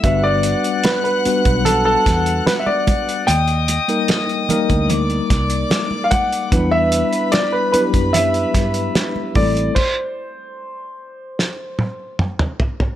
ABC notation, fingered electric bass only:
X:1
M:4/4
L:1/16
Q:1/4=74
K:Ador
V:1 name="Fingered electric bass" clef=bass
G,,,3 z4 B,,,3 E,,2 z4 | _E,,3 z4 D,,3 C,,2 z4 | E,,3 z4 F,,3 G,,2 z2 A,,,2 | z16 |]